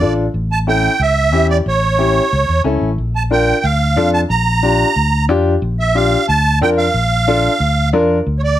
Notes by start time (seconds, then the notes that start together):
Already playing: D5
0.00 A1 D4 F4 A4
0.34 A1
0.52 A5
0.67 C#4 E4 A4 G5
0.99 C#2 E5
1.32 E2 C#4 E4 G4
1.50 D5
1.66 A1 C#5
1.98 C#4 E4 G4
2.33 C#2
2.48 E2
2.64 C#2 C#4 E4 A4
2.81 A1
2.98 A#1
3.16 A5
3.30 D4 F4 A#4 G5
3.64 D2 F5
3.96 F2 D4 F4 A4
4.13 A5
4.30 A#1 A#5
4.63 D4 F4 G4
4.96 D2
5.28 F2 D4 F4 G4
5.62 A#1
5.80 E5
5.95 D4 F4 G4 F5
6.28 D2 A5
6.61 F2 D4 F4 A#4 G5
6.78 F5
6.94 A#1
7.27 D4 F4 A4
7.60 D2
7.93 F2 D4 F4 A#4
8.26 D2
8.39 C#5
8.44 D5